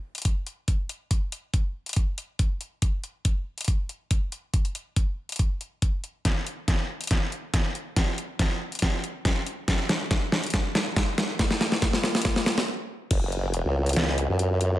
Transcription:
0.15 closed hi-hat
0.18 closed hi-hat
0.22 closed hi-hat
0.25 kick, closed hi-hat
0.47 closed hi-hat
0.68 kick, closed hi-hat
0.89 closed hi-hat
1.11 kick, closed hi-hat
1.32 closed hi-hat
1.54 kick, closed hi-hat
1.86 closed hi-hat
1.89 closed hi-hat
1.93 closed hi-hat
1.96 kick, closed hi-hat
2.18 closed hi-hat
2.39 kick, closed hi-hat
2.61 closed hi-hat
2.82 kick, closed hi-hat
3.04 closed hi-hat
3.25 kick, closed hi-hat
3.58 closed hi-hat
3.61 closed hi-hat
3.65 kick, closed hi-hat
3.68 closed hi-hat
3.89 closed hi-hat
4.11 kick, closed hi-hat
4.32 closed hi-hat
4.54 kick, closed hi-hat
4.65 closed hi-hat
4.75 closed hi-hat
4.96 kick, closed hi-hat
5.29 closed hi-hat
5.32 closed hi-hat
5.36 kick, closed hi-hat
5.39 closed hi-hat
5.61 closed hi-hat
5.82 kick, closed hi-hat
6.04 closed hi-hat
6.25 kick, snare, closed hi-hat
6.47 closed hi-hat
6.68 kick, snare, closed hi-hat
7.01 closed hi-hat
7.04 closed hi-hat
7.07 snare, closed hi-hat
7.11 kick, closed hi-hat
7.32 closed hi-hat
7.54 kick, snare, closed hi-hat
7.75 closed hi-hat
7.96 kick, snare, closed hi-hat
8.18 closed hi-hat
8.39 kick, snare, closed hi-hat
8.72 closed hi-hat
8.75 closed hi-hat
8.79 kick, snare, closed hi-hat
8.82 closed hi-hat
9.04 closed hi-hat
9.25 kick, snare, closed hi-hat
9.47 closed hi-hat
9.68 kick, snare, closed hi-hat
9.89 snare, closed hi-hat
10.11 kick, snare, closed hi-hat
10.32 snare
10.44 closed hi-hat
10.47 closed hi-hat
10.50 kick, snare, closed hi-hat
10.54 closed hi-hat
10.75 snare, closed hi-hat
10.96 kick, snare, closed hi-hat
11.18 snare, closed hi-hat
11.39 kick, snare, closed hi-hat
11.51 snare, closed hi-hat
11.61 snare, closed hi-hat
11.72 snare
11.82 kick, snare, closed hi-hat
11.93 snare
12.04 snare
12.15 snare, closed hi-hat
12.18 closed hi-hat
12.22 snare, closed hi-hat
12.25 kick, closed hi-hat
12.36 snare
12.46 snare, closed hi-hat
12.58 snare
13.11 wobble bass F#1, kick, closed hi-hat, crash
13.22 wobble bass F#1
13.32 closed hi-hat
13.54 closed hi-hat
13.65 wobble bass C#2
13.86 closed hi-hat
13.89 closed hi-hat
13.93 snare, closed hi-hat
13.96 closed hi-hat
14.18 closed hi-hat
14.29 wobble bass F#2
14.39 closed hi-hat
14.61 closed hi-hat

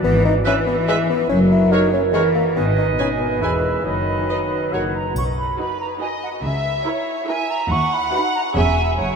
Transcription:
0.03 double bass section G#1, cello section E3, bassoon B3, french horn section E4 B4
0.25 bassoon D#4
0.45 cello section E3, bassoon C#4, clarinet B4, viola section B4, violin section B4 E5, oboe E5, flute G#5
0.67 bassoon B3
0.88 bassoon G#3, viola section B4, violin section B4 E5, clarinet B4, oboe E5, flute G#5
1.10 bassoon B3
1.29 double bass section F#1, cello section F#3, bassoon C#4, french horn section F#4 A#4
1.51 bassoon E4
1.72 bassoon D#4, viola section F#4, clarinet A#4, violin section A#4 C#5, oboe C#5, flute F#5
1.94 bassoon C#4
2.13 cello section E3, bassoon G#3, viola section F#4, violin section A#4 C#5, clarinet A#4, oboe C#5, flute F#5
2.35 bassoon A#3
2.56 double bass section G#1, cello section D#3, bassoon B3, french horn section D#4 B4, clarinet B4, oboe D#5, flute G#5
2.78 bassoon D#4
2.99 cello section B2, bassoon C#4, viola section D#4, violin section B4 G#5
3.20 bassoon B3
3.41 double bass section E1, bassoon G#3, french horn section E4, viola section E4, clarinet B4, violin section B4 G#5, oboe E5, flute B5
3.85 double bass section F#1, cello section D#3, bassoon F#3, french horn section D#4, clarinet B4, oboe D#5, flute B5
4.29 viola section D#4, violin section B4 D#5
4.72 double bass section F#1, french horn section F#4 A#4, viola section F#4, violin section A#4 C#5, clarinet C#5, oboe F#5, flute F#5
4.95 flute A#5
5.15 double bass section B1, cello section B2, flute C#6, triangle
5.38 flute B5
5.59 viola section D#4 F#4, violin section B4, flute B5
5.81 flute A#5
6.01 viola section D#4 F#4, violin section B4 D#5, flute G#5
6.23 flute F#5
6.43 double bass section C#2, cello section C#3, violin section E5, flute E5
6.86 viola section E4, violin section A#4 C#5
7.28 viola section E4, violin section A#4 E5, flute G#5
7.50 flute A#5
7.70 cello section D#2, double bass section D#2, violin section F#5, flute C#6
7.94 flute B5
8.13 viola section D#4 F#4, violin section B4, flute B5
8.35 flute A#5
8.55 double bass section E1, cello section E2, viola section C#4 G#4, violin section C#5 E5, flute G#5
8.98 double bass section F#1, cello section F#2, violin section C#5, flute F#5

